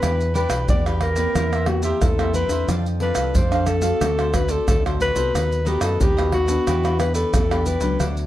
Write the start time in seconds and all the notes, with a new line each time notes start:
Already playing: B3 D4 G4 B4
0.02 E2 E3 E4 G4 B4 D5, pandeiro, tamborim, maracas, surdo
0.19 muted cavaquinho stroke, pandeiro, maracas
0.34 B3 D4 E4 G4 B4 D5, pandeiro, maracas
0.49 B1 G4 B4 D5, pandeiro, tamborim, maracas
0.68 E2 B2 E4 G4 B4 D5, pandeiro, maracas, surdo
0.86 B3 D4 G4 B4 D5, pandeiro, tamborim, maracas
1.01 A#4, pandeiro, tamborim
1.16 A#3 C4 G4 B4 D5, pandeiro, maracas
1.35 E2 E3 E4 A#4 C5 E5, pandeiro, tamborim, maracas, surdo
1.53 A#4 C5 E5, pandeiro, tamborim, maracas
1.66 A#3 C4 F#4 G4, muted cavaquinho stroke, pandeiro, tamborim
1.83 G4 A#4 C5 E5, pandeiro, maracas
2.01 E2 E3 A4, pandeiro, tamborim, maracas, surdo
2.18 A#3 C4 G4 A#4 C5 E5, pandeiro, tamborim, maracas
2.34 E4 A#4 B4 C5 E5, pandeiro, maracas
2.47 E2 C4 D4 A4 E5, pandeiro, maracas
2.52 A#4 C5
2.67 F2 F3 D4 A4 D5, pandeiro, tamborim, maracas, surdo
2.71 F5
2.86 muted cavaquinho stroke, pandeiro, maracas
3.00 C4 D4 A4 B4 D5 F5, pandeiro
3.15 C2 A4 D5 F5, pandeiro, tamborim, maracas
3.33 F2 C3 D4 A4 C5 D5, pandeiro, maracas, surdo
3.38 F5
3.50 C4 D4 A4 D5 F5, pandeiro, tamborim, maracas
3.55 A4
3.66 A4, pandeiro, tamborim, maracas
3.81 A3 C4 F#4 A4 D5 F5, pandeiro, maracas
4.01 D2 D3 F#4 A4 C5 D5, pandeiro, tamborim, maracas, surdo
4.19 A4 C5 D5, pandeiro, tamborim, maracas
4.33 A3 C4 F#4 B4, muted cavaquinho stroke, pandeiro, tamborim, maracas, surdo
4.49 A4 C5 D5, pandeiro, maracas
4.67 D2 A2 A4, pandeiro, tamborim, maracas, surdo
4.85 A3 C4 F#4 A4 C5 D5, pandeiro, tamborim, maracas
5.00 F#4 A4 B4 C5 D5, pandeiro, maracas
5.15 C2 A3 B3 F#4 A4 C5 D5, pandeiro, maracas
5.34 D#2 D#3 D#4 A4 B4 D#5, pandeiro, tamborim, maracas, surdo
5.51 muted cavaquinho stroke, pandeiro, maracas
5.65 A3 B3 D#4 F#4 G4 A4 B4 D#5, pandeiro, maracas
5.81 F#2 A4 B4 D#5, pandeiro, tamborim, maracas
6.00 D#2 D#3 D#4 G4 A4 B4 D#5, pandeiro, maracas, surdo
6.17 A3 B3 F#4 A4 B4 D#5, pandeiro, tamborim, maracas
6.32 F#4, pandeiro, tamborim
6.46 B3 D4 A4 B4 D#5, pandeiro, maracas
6.67 E2 E3 E4 G4 B4 D5, pandeiro, tamborim, maracas, surdo
6.83 G4 B4 D5, pandeiro, tamborim, maracas
6.98 B3 D4 G4 B4, muted cavaquinho stroke, pandeiro, tamborim, maracas
7.14 G4 A4 B4 D5, pandeiro, maracas
7.33 E2 B2 A4, pandeiro, tamborim, maracas, surdo
7.50 B3 D4 G4 B4 D5, pandeiro, tamborim, maracas
7.66 E4 G4 B4 D5, pandeiro, maracas
7.80 C#2 F#3 A3 D4 G4 B4 D5, pandeiro, maracas
8.00 D2 D3 D4 A4 D5 F#5, pandeiro, tamborim, maracas, surdo
8.17 muted cavaquinho stroke, pandeiro, maracas